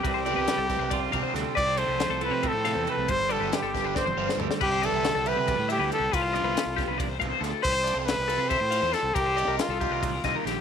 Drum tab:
CC |--------------|--------------|--------------|x-------------|
RD |x-x-x-x-x-x-x-|x-x-x-x-x-x-x-|x-x-x-x-------|--x-x-x-x-x-x-|
SD |----o-o-----o-|----o-----o---|----o-o-o--o-o|----o---------|
T1 |--------------|--------------|---------o----|--------------|
FT |--------------|--------------|------------o-|--------------|
BD |o-----o-o-o---|o-------o-----|o-----o-o-----|o-------o-----|

CC |--------------|--------------|--------------|
RD |x-x-x-x-x-x-x-|x-x-x-x-x-x-x-|x-x-x-x-x-x-x-|
SD |----o-o-----o-|----o-------o-|----o-----o-o-|
T1 |--------------|--------------|--------------|
FT |--------------|--------------|--------------|
BD |o-----o-o-o---|o-------o-----|o-----o-o-o---|